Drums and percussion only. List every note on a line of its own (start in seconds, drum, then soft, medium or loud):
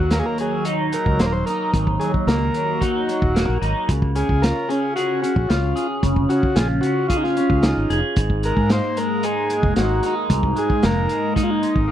0.11 snare medium
0.11 closed hi-hat medium
0.38 closed hi-hat medium
0.65 closed hi-hat medium
0.92 closed hi-hat medium
1.06 kick medium
1.19 snare medium
1.19 closed hi-hat medium
1.47 closed hi-hat medium
1.74 kick medium
1.74 closed hi-hat medium
1.87 kick medium
2.01 closed hi-hat soft
2.14 kick medium
2.28 snare medium
2.28 closed hi-hat medium
2.54 closed hi-hat medium
2.81 kick medium
2.81 closed hi-hat medium
3.09 closed hi-hat medium
3.22 kick medium
3.36 snare medium
3.36 closed hi-hat medium
3.63 closed hi-hat medium
3.89 kick loud
3.89 closed hi-hat medium
4.02 kick medium
4.16 closed hi-hat medium
4.29 kick medium
4.43 snare loud
4.43 closed hi-hat medium
4.70 closed hi-hat medium
4.97 closed hi-hat medium
5.24 closed hi-hat medium
5.36 kick medium
5.50 snare medium
5.50 closed hi-hat medium
5.77 closed hi-hat medium
6.03 kick loud
6.03 closed hi-hat medium
6.16 kick medium
6.30 closed hi-hat medium
6.43 kick medium
6.56 snare loud
6.56 closed hi-hat medium
6.83 closed hi-hat medium
7.10 kick medium
7.10 closed hi-hat medium
7.24 snare soft
7.37 closed hi-hat medium
7.50 kick medium
7.63 snare loud
7.63 closed hi-hat medium
7.90 closed hi-hat medium
8.16 kick loud
8.16 closed hi-hat medium
8.30 kick medium
8.43 closed hi-hat medium
8.57 kick medium
8.70 snare medium
8.70 closed hi-hat medium
8.97 closed hi-hat medium
9.23 closed hi-hat medium
9.50 closed hi-hat medium
9.63 kick medium
9.76 snare medium
9.76 closed hi-hat medium
10.03 closed hi-hat medium
10.30 kick medium
10.30 closed hi-hat medium
10.43 kick medium
10.56 closed hi-hat medium
10.70 kick medium
10.83 snare loud
10.83 closed hi-hat medium
11.09 closed hi-hat medium
11.36 kick medium
11.36 closed hi-hat medium
11.63 closed hi-hat medium
11.76 kick medium